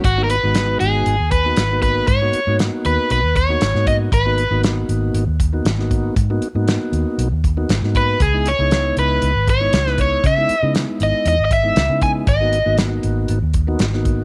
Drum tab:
HH |x-x-x-x-x-x-x-x-|x-x-x-x-x-x-x-x-|x-x-x-x-x-x-x-x-|x-x-x-x-x-x-x-x-|
SD |----o-------o---|----o-------oo--|----o-------oo--|----o-------oo--|
BD |o---------o---o-|o---------o---o-|o---------o---o-|o---------o---o-|

HH |x-x-x-x-x-x-x-x-|x-x-x-x-x-x-x-x-|x-x-x-x-x-x-x-x-|
SD |----o-------oo--|----o-------o---|----o-------oo--|
BD |o---------o---o-|o---------o---o-|o---------o---o-|